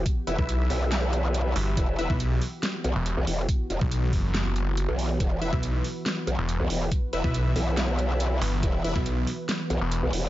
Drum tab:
HH |x-x-x-o-x-x-x-o-|x-x-x-o-x-x-x-o-|x-x-x-o-x-x-x-o-|x-x-x-o-x-x-x-o-|
SD |--------o-------|--------o-------|--------o-------|--------o-------|
BD |o--o------------|o--o------------|o--o--o---------|o--o------------|

HH |x-x-x-o-x-x-x-o-|x-x-x-o-x-x-x-o-|
SD |--------o-------|--------o-------|
BD |o--o------------|o--o------------|